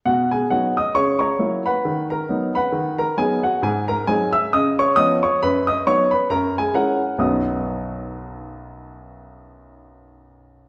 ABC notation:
X:1
M:4/4
L:1/8
Q:"Swing" 1/4=135
K:B
V:1 name="Upright piano"
[Ff] [Gg] [Ff] [dd'] [cc'] [cac']2 [Bfb]- | [Bfb] [Aa]2 [Bfb]2 [Aa] [Gg] [Ff] | [Gg] [Aa] [Gg] [ee'] [dd'] [cc'] [dd'] [cc'] | [Bb] [dd'] [cc'] [Bb] [Aa] [Gg] [Afa]2 |
[B,,,F,,F,B,DFd']8- | [B,,,F,,F,B,DFd']8 |]
V:2 name="Upright piano"
B,,2 [F,B,D]2 C,2 [F,A,E]2 | D,2 [F,B,D]2 D,2 [F,B,D]2 | G,,2 [F,^B,D]2 C,2 [^E,=B,C]2 | F,,2 [F,B,D]2 F,,2 [G,CE]2 |
z8 | z8 |]